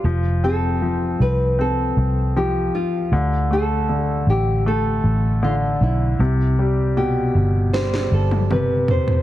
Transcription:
<<
  \new Staff \with { instrumentName = "Nylon-string guitar" } { \time 4/4 \key c \major \tempo 4 = 78 f'8 a'4 b'8 a'4 g'8 f'8~ | f'8 a'4 g'8 a'4 f'8 e'8~ | e'8 r8 g'4 c''8 a'8 b'8 c''8 | }
  \new Staff \with { instrumentName = "Grand piano" } { \clef bass \time 4/4 \key c \major f8 c'8 f4 c'4 f4 | d8 a8 d4 a4 d4 | c8 g8 b,4 g4 c4 | }
  \new Staff \with { instrumentName = "Fingered electric bass" } { \clef bass \time 4/4 \key c \major f,,4. c,4 c,4 r8 | d,4. a,,4 a,,4 b,,8 | c,4. g,,4 g,,4 r8 | }
  \new DrumStaff \with { instrumentName = "Drums" } \drummode { \time 4/4 r4 r4 r4 r4 | r4 r4 r4 r4 | r4 r4 sn16 sn8 tommh16 toml8 tomfh16 tomfh16 | }
>>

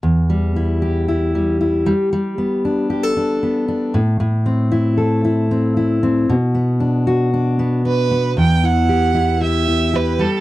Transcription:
<<
  \new Staff \with { instrumentName = "Violin" } { \time 4/4 \key e \minor \tempo 4 = 115 r1 | r1 | r1 | r2. b'4 |
g''8 fis''4. e''4 b'8 a'8 | }
  \new Staff \with { instrumentName = "Steel-string acoustic guitar" } { \time 4/4 \key e \minor e,8 g8 e'8 g'8 e'8 g8 e'8 g8 | g8 b8 d'8 g'16 a'16 d'8 b8 d'8 a,8 | a,8 c'8 e'8 a'8 e'8 c'8 e'8 c'8 | b,8 b8 d'8 fis'8 d'8 b8 d'8 b8 |
e,8 e'8 g'8 e'8 g'8 e'8 g'8 g8 | }
>>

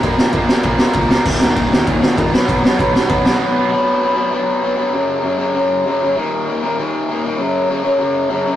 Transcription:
<<
  \new Staff \with { instrumentName = "Distorted electric guitar" } { \clef bass \time 4/4 \key ces \lydian \tempo 4 = 196 <bes, f bes>8 <bes, f bes>8 <bes, f bes>8 <bes, f bes>8 <bes, f bes>8 <bes, f bes>8 <bes, f bes>8 <bes, f bes>8 | <ees, bes, ees>8 <ees, bes, ees>8 <ees, bes, ees>8 <ees, bes, ees>8 <ees, bes, ees>8 <ees, bes, ees>8 <ees, bes, ees>8 <b, fis b>8 | <b, fis b>8 <b, fis b>8 <b, fis b>8 <b, fis b>8 <b, fis b>8 <b, fis b>8 <b, fis b>8 <b, fis b>8 | r1 |
r1 | r1 | r1 | }
  \new Staff \with { instrumentName = "Overdriven electric guitar" } { \clef bass \time 4/4 \key ces \lydian <bes, f bes>8 <bes, f bes>8 <bes, f bes>8 <bes, f bes>8 <bes, f bes>8 <bes, f bes>8 <bes, f bes>8 <bes, f bes>8 | <ees, bes, ees>8 <ees, bes, ees>8 <ees, bes, ees>8 <ees, bes, ees>8 <ees, bes, ees>8 <ees, bes, ees>8 <ees, bes, ees>8 <b, fis b>8 | <b, fis b>8 <b, fis b>8 <b, fis b>8 <b, fis b>8 <b, fis b>8 <b, fis b>8 <b, fis b>8 <b, fis b>8 | <b, fis b>4 <b, fis b>8 <b, fis b>8 <b, fis b>4 <b, fis b>8 <b, fis b>8 |
<ges, des ges>4 <ges, des ges>8 <ges, des ges>8 <ges, des ges>4 <ges, des ges>8 <ges, des ges>8 | <ees, bes, ees>4 <ees, bes, ees>8 <ees, bes, ees>8 <ees, bes, ees>4 <ees, bes, ees>8 <ees, bes, ees>8 | <ges, des ges>4 <ges, des ges>8 <ges, des ges>8 <ges, des ges>4 <ges, des ges>8 <ges, des ges>8 | }
  \new Staff \with { instrumentName = "Picked electric bass" } { \clef bass \time 4/4 \key ces \lydian bes,,8 bes,,8 bes,,8 bes,,8 bes,,8 bes,,8 des,4 | ees,,8 ees,,8 ees,,8 ees,,8 bes,,4 bes,,8 b,,8 | b,,8 b,,8 b,,8 b,,8 b,,8 b,,8 r4 | r1 |
r1 | r1 | r1 | }
  \new DrumStaff \with { instrumentName = "Drums" } \drummode { \time 4/4 <bd cymr>8 sn8 <bd cymr>8 sn8 <bd cymr>8 sn8 <bd cymr>8 sn8 | <cymc bd>8 sn8 <bd cymr>8 sn8 <bd cymr>8 sn8 <bd cymr>8 sn8 | <bd cymr>8 sn8 <bd cymr>8 sn8 <bd cymr>8 sn8 r4 | r4 r4 r4 r4 |
r4 r4 r4 r4 | r4 r4 r4 r4 | r4 r4 r4 r4 | }
>>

